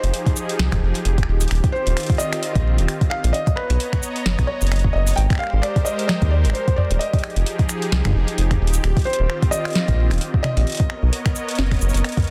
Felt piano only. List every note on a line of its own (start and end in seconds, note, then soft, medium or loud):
0.00 0.33 C5 loud
1.72 2.16 C5 medium
2.18 3.13 D#5 loud
3.10 3.34 F5 loud
3.33 3.57 D#5 loud
3.56 3.99 B4 medium
4.47 4.95 C#5 loud
4.93 5.15 D#5 loud
5.16 5.21 G5 loud
5.39 5.63 F5 loud
5.62 5.84 D5 loud
5.85 6.06 D#5 loud
6.08 6.30 D#5 loud
6.30 6.36 D5 medium
6.53 6.78 C5 medium
6.76 7.01 D5 medium
6.99 7.65 D#5 medium
9.05 9.53 C5 loud
9.51 10.41 D#5 loud
10.43 12.00 D#5 loud